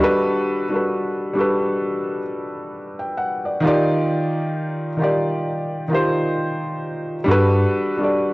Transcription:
Already playing: felt piano G3 D#5
0.00 felt piano D4 F#4 A4 B4
0.69 felt piano G3 D4 F#4
0.74 felt piano A4 B4
1.33 felt piano G3 D4 F#4
1.38 felt piano A4 B4
2.99 felt piano G5
3.17 felt piano F#5
3.45 felt piano D5
3.61 felt piano D#3 D#4 F4
3.66 felt piano G4 D5
4.97 felt piano D#3 D#4 F4
5.02 felt piano G4 D5
5.88 felt piano D#3 D#4 F4
5.93 felt piano G4 C5
7.24 tine electric piano G2, felt piano G3 D4 F#4
7.29 felt piano A4 B4
7.97 felt piano G3 D4 F#4
8.02 felt piano A4 D5

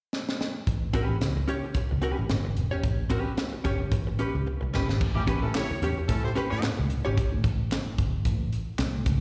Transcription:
0.13 snare
0.29 snare
0.41 snare
0.67 picked electric bass A1, kick, closed hi-hat
0.93 hollow-body jazz guitar C#4 G4 B4, kick, closed hi-hat
1.09 picked electric bass A1
1.21 picked electric bass C#2, snare, closed hi-hat
1.37 muted hollow-body jazz guitar stroke
1.48 hollow-body jazz guitar C#4 G4 C#5, closed hi-hat
1.64 muted hollow-body jazz guitar stroke
1.74 muted picked electric bass stroke, muted hollow-body jazz guitar stroke, kick, closed hi-hat
1.91 picked electric bass C#2, muted hollow-body jazz guitar stroke
2.02 hollow-body jazz guitar C#4 G4 B4, closed hi-hat
2.17 picked electric bass A1, muted hollow-body jazz guitar stroke
2.29 picked electric bass G1, muted hollow-body jazz guitar stroke, snare, closed hi-hat
2.45 muted hollow-body jazz guitar stroke
2.57 picked electric bass E1, closed hi-hat
2.71 hollow-body jazz guitar C#4 G4 C#5
2.84 picked electric bass A1, kick, closed hi-hat
3.10 hollow-body jazz guitar C#4 G4 B4, kick, closed hi-hat
3.26 muted picked electric bass stroke
3.37 snare, closed hi-hat
3.53 muted hollow-body jazz guitar stroke
3.64 picked electric bass G1, hollow-body jazz guitar C#4 G4 C#5, kick, closed hi-hat
3.80 muted hollow-body jazz guitar stroke
3.92 picked electric bass A1, muted hollow-body jazz guitar stroke, kick, closed hi-hat
4.07 muted hollow-body jazz guitar stroke
4.19 hollow-body jazz guitar C#4 G4 B4, closed hi-hat
4.35 picked electric bass C#2, muted hollow-body jazz guitar stroke
4.46 muted hollow-body jazz guitar stroke
4.61 picked electric bass C2, muted hollow-body jazz guitar stroke
4.74 picked electric bass G1, hollow-body jazz guitar C#4 G4 B4, snare
4.88 picked electric bass G#1, muted hollow-body jazz guitar stroke, snare
5.01 picked electric bass A1, kick, crash, muted conga
5.15 horn section C#4 E4 G4, high conga
5.27 picked electric bass A1, hollow-body jazz guitar C#4 G4 B4, kick, closed hi-hat
5.42 horn section C#4 E4 A4, high conga
5.54 horn section E4 G4 C#5, snare, clap, closed hi-hat, muted conga
5.71 muted hollow-body jazz guitar stroke, muted picked electric bass stroke, muted conga, high conga
5.82 picked electric bass E2, hollow-body jazz guitar C#4 G4 C#5, closed hi-hat, low conga
5.98 muted hollow-body jazz guitar stroke
6.08 picked electric bass A2, horn section C#4 E4 A4, muted hollow-body jazz guitar stroke, kick, closed hi-hat, high conga, low conga
6.23 horn section E4 G4 C5, muted hollow-body jazz guitar stroke
6.35 hollow-body jazz guitar C#4 G4 B4, muted picked electric bass stroke, closed hi-hat
6.50 picked electric bass A2, horn section E4 G4 C#5, muted hollow-body jazz guitar stroke
6.62 muted hollow-body jazz guitar stroke, muted picked electric bass stroke, snare, clap, closed hi-hat
6.77 picked electric bass C#2, muted hollow-body jazz guitar stroke, high conga
6.90 closed hi-hat, low conga
7.05 picked electric bass G#1, hollow-body jazz guitar C#4 G4 C#5
7.18 picked electric bass A1, kick, closed hi-hat
7.32 muted conga, high conga
7.44 picked electric bass A1, kick, closed hi-hat
7.58 high conga
7.71 snare, clap, closed hi-hat, muted conga
7.87 muted picked electric bass stroke, muted conga, high conga
7.98 picked electric bass G1, kick, closed hi-hat, low conga
8.25 picked electric bass A1, kick, closed hi-hat, high conga, low conga
8.41 muted conga
8.53 closed hi-hat
8.79 picked electric bass C2, snare, clap, closed hi-hat
8.94 high conga
9.06 picked electric bass C#2, kick, closed hi-hat, low conga

